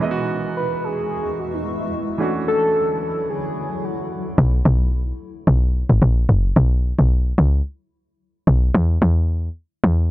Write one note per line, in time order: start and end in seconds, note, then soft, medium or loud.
0.00 2.18 E2 medium
0.00 2.15 E3 medium
0.00 2.18 E3 medium
0.00 2.16 G#3 medium
0.00 2.18 G#3 medium
0.00 2.16 B3 medium
0.00 2.18 F#4 medium
0.00 2.17 D#5 medium
0.04 0.10 E4 medium
0.11 2.21 F#4 medium
0.57 0.86 B4 loud
0.84 1.40 G#4 loud
1.39 1.55 F#4 loud
1.54 1.67 D#4 medium
1.66 2.20 E4 medium
2.18 4.36 D2 medium
2.18 4.36 D3 medium
2.18 4.33 E3 medium
2.18 4.36 F#3 medium
2.18 4.34 A3 medium
2.18 4.34 C#4 medium
2.18 4.35 D4 medium
2.18 4.36 E4 medium
2.18 2.33 F#4 loud
2.23 4.36 F#4 medium
2.48 2.98 A4 loud
3.02 3.27 A4 medium
3.30 3.86 G#4 medium
3.84 4.26 F#4 medium
4.38 4.62 B1 loud
4.65 5.13 B1 loud
5.47 5.84 B1 loud
5.89 6.00 G#1 loud
6.02 6.26 A#1 loud
6.29 6.53 F#1 medium
6.56 6.93 B1 loud
6.99 7.33 B1 medium
7.38 7.62 C#2 medium
8.47 8.71 B1 loud
8.74 8.98 E2 loud
9.02 9.49 E2 loud
9.84 10.11 E2 loud